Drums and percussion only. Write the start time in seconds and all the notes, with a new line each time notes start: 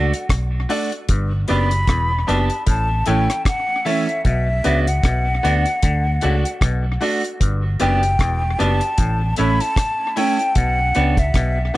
0.14 closed hi-hat
0.29 kick, cross-stick, closed hi-hat
0.70 open hi-hat
0.92 closed hi-hat
1.09 kick, closed hi-hat
1.48 closed hi-hat
1.71 closed hi-hat
1.87 kick, cross-stick, closed hi-hat
2.29 closed hi-hat
2.50 closed hi-hat
2.67 kick, closed hi-hat
3.06 closed hi-hat
3.30 cross-stick, closed hi-hat
3.45 kick, cross-stick, closed hi-hat
3.86 open hi-hat
4.09 closed hi-hat
4.25 kick, closed hi-hat
4.64 closed hi-hat
4.87 closed hi-hat
5.04 kick, cross-stick, closed hi-hat
5.45 closed hi-hat
5.66 closed hi-hat
5.83 kick, closed hi-hat
6.21 closed hi-hat
6.45 closed hi-hat
6.61 kick, cross-stick, closed hi-hat
7.01 open hi-hat
7.24 closed hi-hat
7.41 kick, closed hi-hat
7.80 closed hi-hat
8.03 closed hi-hat
8.19 kick, cross-stick, closed hi-hat
8.60 closed hi-hat
8.81 closed hi-hat
8.98 kick, closed hi-hat
9.36 closed hi-hat
9.60 closed hi-hat
9.76 kick, cross-stick, closed hi-hat
10.17 open hi-hat
10.39 closed hi-hat
10.55 kick, closed hi-hat
10.95 closed hi-hat
11.17 kick, closed hi-hat
11.34 kick, cross-stick, closed hi-hat